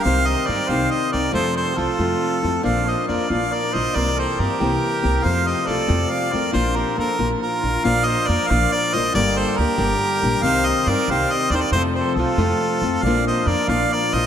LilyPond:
<<
  \new Staff \with { instrumentName = "Harmonica" } { \time 6/8 \key bes \major \tempo 4. = 92 f''8 ees''8 d''8 f''8 ees''8 d''8 | c''8 c''8 a'2 | f''8 ees''8 d''8 f''8 d''8 ees''8 | d''8 c''8 bes'2 |
f''8 ees''8 d''4 f''8 d''8 | c''8 bes'8 bes'4 bes'4 | f''8 ees''8 d''8 f''8 d''8 ees''8 | d''8 c''8 bes'2 |
f''8 ees''8 d''8 f''8 ees''8 d''32 c''32 d''16 | c''8 c''8 a'2 | f''8 ees''8 d''8 f''8 d''8 ees''8 | }
  \new Staff \with { instrumentName = "Trumpet" } { \time 6/8 \key bes \major c''8 c''8 bes'8 c''8 c''8 bes'8 | a'8 a'8 f'2 | d''8 c''8 bes'8 d''8 bes'8 c''8 | bes'8 a'8 g'2 |
c''8 c''8 a'4 d''8 bes'8 | f'8 g'8 a'8 f'8 f'4 | d''8 c''8 bes'8 d''8 bes'8 c''8 | bes'8 a'8 g'2 |
c''8 c''8 bes'8 c''8 c''8 bes'32 a'32 bes'16 | a'8 a'8 f'2 | d''8 c''8 bes'8 d''8 bes'8 c''8 | }
  \new Staff \with { instrumentName = "Nylon-string guitar" } { \time 6/8 \key bes \major <c ees c' ees' g'>4 <ees c' ees' g'>8 <c ees c' ees' g'>4 <c' ees' g'>8 | <f, c f a c' f'>4 <f a c' f'>8 <f, c f a c' f'>4 <f a c' f'>8 | <bes, f bes d' f'>4 <f bes d' f'>8 <bes, f bes d' f'>4 <bes d' f'>8 | <c e bes c' g'>4 <e bes c' g'>8 <c e bes c' g'>4 <bes c' g'>8 |
<f, c f a c' f'>4 <f a c' f'>8 <f, c f a c' f'>4 <f a c' f'>8 | <bes, f bes d' f'>4 <f bes d' f'>8 <bes, f bes d' f'>4 <bes d' f'>8 | <bes, f bes d' f'>4 <f bes d' f'>8 <bes, f bes d' f'>4 <bes d' f'>8 | <g, d g bes d' g'>4 <g bes d' g'>8 <g, d g bes d' g'>4 <g bes d' g'>8 |
<c ees c' ees' g'>4 <ees c' ees' g'>8 <c ees c' ees' g'>4 <c' ees' g'>8 | <f, c f a c' f'>4 <f a c' f'>8 <f, c f a c' f'>4 <f a c' f'>8 | <bes, f bes d' f'>4 <f bes d' f'>8 <bes, f bes d' f'>4 <bes d' f'>8 | }
  \new Staff \with { instrumentName = "Upright bass" } { \clef bass \time 6/8 \key bes \major c,4 g,16 r16 c,8 r8 c,8 | f,4 c,16 r16 f,8 r8 f,8 | bes,,4 f,16 r16 bes,,8 r8 bes,,8 | c,4 g,16 r16 c,8 r8 c,8 |
f,4 c,16 r16 f,8 r8 f,8 | bes,,4 f,16 r16 bes,,8 r8 bes,,8 | bes,,4 f,16 r16 bes,,8 r8 bes,,8 | g,,4 d,16 r16 g,,8 r8 bes,,8 |
c,4 g,16 r16 c,8 r8 ees,8 | f,4 c,16 r16 f,8 r8 f,8 | bes,,4 f,16 r16 bes,,8 r8 bes,,8 | }
>>